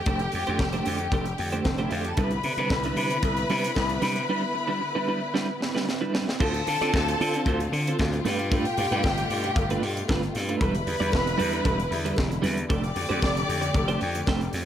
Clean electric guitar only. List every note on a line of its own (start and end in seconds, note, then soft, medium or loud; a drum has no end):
0.07 0.20 A3 medium
0.07 0.21 D4 medium
0.07 0.20 G4 medium
0.07 0.20 C5 medium
0.21 muted clean electric guitar stroke soft
0.33 muted clean electric guitar stroke soft
0.47 0.57 A3 medium
0.47 0.57 D4 medium
0.47 0.57 G4 medium
0.47 0.57 C5 medium
0.59 muted clean electric guitar stroke soft
0.73 0.84 A3 medium
0.73 0.85 D4 medium
0.73 0.85 G4 medium
0.73 0.85 C5 medium
0.86 0.97 A3 medium
0.86 0.97 D4 medium
0.86 0.97 G4 medium
0.86 0.97 C5 medium
1.00 muted clean electric guitar stroke soft
1.12 1.26 A3 medium
1.12 1.25 D4 medium
1.12 1.25 G4 loud
1.12 1.25 C5 loud
1.26 muted clean electric guitar stroke soft
1.39 muted clean electric guitar stroke soft
1.52 1.63 A3 soft
1.52 1.63 D4 soft
1.52 1.62 G4 medium
1.52 1.62 C5 medium
1.65 muted clean electric guitar stroke soft
1.79 1.90 A3 medium
1.79 1.90 D4 medium
1.79 1.91 G4 medium
1.79 1.91 C5 medium
1.91 2.02 A3 medium
1.91 2.02 D4 medium
1.91 2.03 G4 medium
1.91 2.03 C5 medium
2.05 muted clean electric guitar stroke soft
2.17 2.32 G3 medium
2.17 2.32 D4 medium
2.17 2.31 E4 medium
2.17 2.32 B4 medium
2.33 muted clean electric guitar stroke soft
2.46 muted clean electric guitar stroke soft
2.59 2.69 G3 soft
2.59 2.69 D4 medium
2.59 2.69 E4 medium
2.59 2.68 B4 medium
2.72 muted clean electric guitar stroke soft
2.85 2.96 G3 medium
2.85 2.96 D4 medium
2.85 2.97 E4 medium
2.85 2.97 B4 medium
2.97 3.08 G3 medium
2.97 3.08 D4 medium
2.97 3.08 E4 medium
2.97 3.09 B4 medium
3.11 muted clean electric guitar stroke medium
3.25 muted clean electric guitar stroke soft
3.39 muted clean electric guitar stroke soft
3.50 3.64 G3 medium
3.50 3.64 D4 medium
3.50 3.63 E4 medium
3.50 3.62 B4 loud
3.64 muted clean electric guitar stroke soft
3.77 muted clean electric guitar stroke soft
3.90 muted clean electric guitar stroke soft
4.02 4.16 G3 medium
4.02 4.15 D4 medium
4.02 4.15 E4 medium
4.02 4.15 B4 medium
4.16 muted clean electric guitar stroke soft
4.29 4.43 G3 medium
4.29 4.42 D4 medium
4.29 4.42 E4 medium
4.29 4.41 B4 medium
4.42 muted clean electric guitar stroke soft
4.54 muted clean electric guitar stroke soft
4.67 4.79 G3 medium
4.67 4.78 D4 medium
4.67 4.78 E4 medium
4.67 4.78 B4 medium
4.81 muted clean electric guitar stroke soft
4.95 5.06 G3 medium
4.95 5.07 D4 medium
4.95 5.07 E4 medium
4.95 5.07 B4 medium
5.08 5.19 G3 medium
5.08 5.19 D4 medium
5.08 5.19 E4 medium
5.08 5.19 B4 medium
5.23 muted clean electric guitar stroke soft
5.34 5.48 G3 medium
5.34 5.48 D4 loud
5.34 5.47 E4 medium
5.34 5.47 B4 loud
5.48 muted clean electric guitar stroke soft
5.60 muted clean electric guitar stroke soft
5.75 5.85 G3 soft
5.75 5.85 D4 soft
5.75 5.85 E4 medium
5.75 5.84 B4 medium
5.87 muted clean electric guitar stroke soft
6.01 6.11 G3 medium
6.01 6.12 D4 medium
6.01 6.13 E4 medium
6.01 6.13 B4 medium
6.13 6.24 G3 medium
6.13 6.24 D4 medium
6.13 6.25 E4 medium
6.13 6.25 B4 medium
6.28 muted clean electric guitar stroke medium
6.40 6.54 C4 medium
6.40 6.54 F4 medium
6.40 6.53 A4 medium
6.40 6.53 C5 medium
6.54 muted clean electric guitar stroke soft
6.67 muted clean electric guitar stroke soft
6.81 6.91 C4 medium
6.81 6.91 F4 medium
6.81 6.91 A4 medium
6.81 6.90 D5 medium
6.93 muted clean electric guitar stroke soft
7.08 muted clean electric guitar stroke soft
7.21 7.34 C4 medium
7.21 7.34 F4 medium
7.21 7.34 A4 medium
7.21 7.33 C5 loud
7.35 7.44 C4 medium
7.35 7.44 F4 medium
7.35 7.44 A4 medium
7.35 7.43 C5 medium
7.47 7.60 C4 medium
7.47 7.60 F4 medium
7.47 7.60 A4 loud
7.47 7.59 C5 loud
7.61 muted clean electric guitar stroke medium
7.73 muted clean electric guitar stroke soft
7.88 7.97 C4 medium
7.88 7.97 F4 medium
7.88 7.96 A4 medium
7.88 7.96 C5 medium
8.14 muted clean electric guitar stroke soft
8.25 8.38 A3 medium
8.25 8.38 D4 medium
8.25 8.39 F4 medium
8.25 8.38 B4 medium
8.40 muted clean electric guitar stroke medium
8.52 8.65 A3 medium
8.52 8.65 D4 medium
8.52 8.66 F4 medium
8.52 8.65 B4 medium
8.67 muted clean electric guitar stroke soft
8.78 muted clean electric guitar stroke soft
8.92 9.01 A3 medium
8.92 9.01 D4 medium
8.92 9.01 F4 medium
8.92 9.01 B4 medium
9.18 muted clean electric guitar stroke soft
9.45 muted clean electric guitar stroke medium
9.56 muted clean electric guitar stroke soft
9.71 9.82 A3 medium
9.71 9.82 D4 medium
9.71 9.82 F4 medium
9.71 9.82 B4 loud
9.83 muted clean electric guitar stroke soft
9.97 muted clean electric guitar stroke medium
10.11 10.23 A3 medium
10.11 10.23 D4 medium
10.11 10.23 F4 loud
10.11 10.22 B4 loud
10.23 muted clean electric guitar stroke soft
10.36 muted clean electric guitar stroke soft
10.49 10.59 A3 medium
10.49 10.59 D4 medium
10.49 10.58 F4 medium
10.49 10.58 B4 medium
10.62 10.75 G3 medium
10.62 10.75 D4 medium
10.62 10.74 E4 medium
10.62 10.74 B4 medium
10.75 muted clean electric guitar stroke medium
10.87 muted clean electric guitar stroke soft
11.00 11.10 G3 medium
11.00 11.10 D4 medium
11.00 11.10 E4 medium
11.00 11.10 D5 medium
11.12 muted clean electric guitar stroke soft
11.26 muted clean electric guitar stroke medium
11.38 11.52 G3 loud
11.38 11.51 D4 medium
11.38 11.51 E4 loud
11.38 11.50 B4 loud
11.51 11.62 G3 medium
11.51 11.62 D4 medium
11.51 11.62 E4 medium
11.51 11.62 B4 medium
11.64 11.78 G3 medium
11.64 11.78 D4 loud
11.64 11.78 E4 loud
11.64 11.77 B4 loud
11.79 muted clean electric guitar stroke soft
11.91 muted clean electric guitar stroke soft
12.05 12.15 G3 medium
12.05 12.15 D4 medium
12.05 12.15 E4 medium
12.05 12.15 B4 medium
12.30 muted clean electric guitar stroke medium
12.42 12.57 G3 loud
12.42 12.57 D4 medium
12.42 12.56 E4 loud
12.42 12.56 B4 loud
12.57 muted clean electric guitar stroke soft
12.69 12.83 A3 medium
12.69 12.83 D4 medium
12.69 12.83 G4 medium
12.69 12.82 C5 medium
12.83 muted clean electric guitar stroke medium
12.96 muted clean electric guitar stroke soft
13.09 13.20 A3 medium
13.09 13.19 D4 medium
13.09 13.19 G4 medium
13.09 13.19 C5 medium
13.21 muted clean electric guitar stroke soft
13.35 muted clean electric guitar stroke soft
13.62 muted clean electric guitar stroke soft
13.74 muted clean electric guitar stroke medium
13.88 14.00 A3 medium
13.88 14.01 D4 medium
13.88 14.01 G4 medium
13.88 14.00 C5 medium
14.01 muted clean electric guitar stroke soft
14.15 muted clean electric guitar stroke soft
14.28 14.41 A3 medium
14.28 14.41 D4 loud
14.28 14.41 G4 loud
14.28 14.41 C5 loud
14.42 muted clean electric guitar stroke soft
14.55 muted clean electric guitar stroke soft